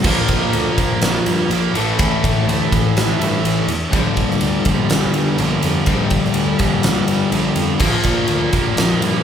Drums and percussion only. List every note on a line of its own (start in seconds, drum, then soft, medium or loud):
0.04 kick loud
0.04 crash loud
0.28 kick medium
0.28 ride medium
0.53 ride loud
0.78 kick medium
0.78 ride medium
1.01 snare loud
1.01 ride loud
1.26 ride medium
1.51 ride loud
1.75 ride medium
1.99 kick loud
1.99 ride loud
2.24 kick medium
2.24 ride medium
2.49 ride loud
2.72 kick medium
2.72 ride medium
2.97 snare loud
2.97 ride loud
3.21 ride medium
3.45 ride loud
3.68 ride medium
3.93 kick loud
3.93 ride loud
4.17 kick medium
4.17 ride medium
4.31 snare soft
4.41 ride loud
4.65 kick medium
4.65 ride medium
4.90 snare loud
4.90 ride loud
5.14 ride medium
5.38 ride loud
5.63 ride medium
5.86 kick loud
5.86 ride loud
6.10 kick medium
6.10 ride medium
6.25 snare soft
6.34 ride loud
6.59 kick medium
6.59 ride medium
6.83 snare loud
6.83 ride loud
7.08 ride medium
7.32 ride loud
7.56 ride medium
7.79 kick loud
7.79 crash loud
8.03 kick medium
8.03 ride medium
8.27 ride loud
8.53 kick medium
8.53 ride medium
8.77 snare loud
8.77 ride loud
9.02 ride medium